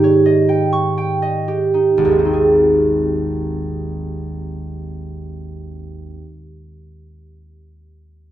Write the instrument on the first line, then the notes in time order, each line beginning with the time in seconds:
harp
Already playing: G#2 D#3 D#4 G4 D#5
0.04 C#5
0.26 D#5
0.49 G5
0.73 C#6
0.98 G5
1.22 D#5
1.48 G4
1.74 D#4
1.98 G#1
2.05 D#2
2.12 G#3
2.19 C4
2.25 D#4
2.33 G#4